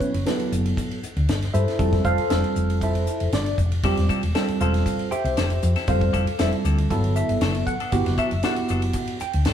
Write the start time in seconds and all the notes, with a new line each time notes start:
Already playing: F#3 B3 C#4 E4 B4 C#5
0.01 kick, hi-hat pedal
0.14 F#1, ride
0.26 F#3 B3 E4 F#4 G4 A4 B4, snare, hi-hat pedal, ride
0.40 muted fretless electric bass stroke, ride
0.52 F#1, hi-hat pedal
0.65 ride
0.77 kick, hi-hat pedal, ride
0.91 ride
1.03 muted fretless electric bass stroke, hi-hat pedal
1.16 D2, ride
1.29 G1, snare, hi-hat pedal, ride
1.42 snare, ride
1.54 G2 E4 A4 C5 E5, hi-hat pedal
1.67 muted fretless electric bass stroke, snare, ride
1.79 F1 G3 C4 F4 A4, kick, hi-hat pedal, ride
1.93 kick, snare, ride
2.05 F1 F4 A4 C5 F5, kick, hi-hat pedal
2.18 ride
2.30 F1 G3 C4 F4 A4, snare, hi-hat pedal, ride
2.44 ride
2.56 F1, hi-hat pedal
2.70 ride
2.81 E4 A4 C5 E5, kick, hi-hat pedal, ride
2.95 ride
3.07 hi-hat pedal
3.20 F1, ride
3.32 G1 D4 D5, snare, hi-hat pedal, ride
3.46 ride
3.58 F1, kick, hi-hat pedal
3.72 ride
3.83 F1 G3 C4 E4 F4 G4 A4, kick, hi-hat pedal, ride
3.97 E1, snare, ride
4.09 G3 C4 E4 A4, kick, hi-hat pedal
4.23 E1, muted clean electric guitar stroke, ride
4.35 G3 C4 E4 F4 A4, snare, hi-hat pedal, ride
4.48 muted fretless electric bass stroke, ride
4.60 E1 G3 C4 E4 F4 A4 C5 F5, hi-hat pedal
4.74 snare, ride
4.86 muted clean electric guitar stroke, kick, hi-hat pedal, ride
4.99 ride
5.11 G4 C5 E5 G5, muted fretless electric bass stroke, muted clean electric guitar stroke, hi-hat pedal
5.24 C2, ride
5.37 F1 G3 C4 E4 A4, snare, hi-hat pedal, ride
5.50 muted clean electric guitar stroke, ride
5.62 F2, muted clean electric guitar stroke, hi-hat pedal
5.76 C4 E4 A4, muted fretless electric bass stroke, snare, ride
5.87 F1 G3 C4 F4 A4 C5 F5, kick, hi-hat pedal, ride
6.01 muted clean electric guitar stroke, kick, ride
6.13 F1 G3 C4 E4 A4, kick, hi-hat pedal
6.27 muted clean electric guitar stroke, ride
6.39 F1 G3 C4 E4 F4 A4 C5 E5, snare, hi-hat pedal, ride
6.52 muted clean electric guitar stroke, ride
6.64 D2 G3 C4 E4 A4, hi-hat pedal
6.78 muted clean electric guitar stroke, ride
6.90 G1 F#3 B3 E4 A4, muted clean electric guitar stroke, kick, hi-hat pedal, ride
7.04 ride
7.16 E5, muted clean electric guitar stroke, hi-hat pedal
7.29 G1, ride
7.41 F#1 F#3 B3 D4 A4, snare, hi-hat pedal, ride
7.55 muted clean electric guitar stroke, ride
7.67 F#5, muted clean electric guitar stroke, kick, hi-hat pedal
7.80 B3 D4 A4, ride
7.92 G1 B3 E4 F#4 G4, kick, hi-hat pedal, ride
8.06 F#1, muted clean electric guitar stroke, snare, ride
8.17 F#3 B3 D4 A4 E5, kick, hi-hat pedal
8.31 F#1, muted clean electric guitar stroke, ride
8.43 F#3 B3 D4 E4 F#4 G4 A4 F#5, snare, hi-hat pedal, ride
8.56 muted clean electric guitar stroke, muted fretless electric bass stroke, ride
8.68 F#1 F#3 B3 D4 A4, hi-hat pedal
8.82 muted clean electric guitar stroke, ride
8.93 muted clean electric guitar stroke, kick, hi-hat pedal, ride
9.07 ride
9.19 G5, muted clean electric guitar stroke, muted fretless electric bass stroke, hi-hat pedal
9.33 D2, ride
9.45 G1 F#3 B3 D4 A4, snare, hi-hat pedal, ride